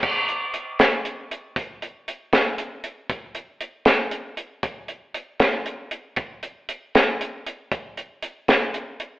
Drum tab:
CC |x-----|------|------|------|
HH |-xxxxx|xxxxxx|xxxxxx|xxxxxx|
SD |---o--|---o--|---o--|---o--|
BD |o-----|o--o--|o-----|o--o--|

CC |------|------|
HH |xxxxxx|xxxxxx|
SD |---o--|---o--|
BD |o-----|o--o--|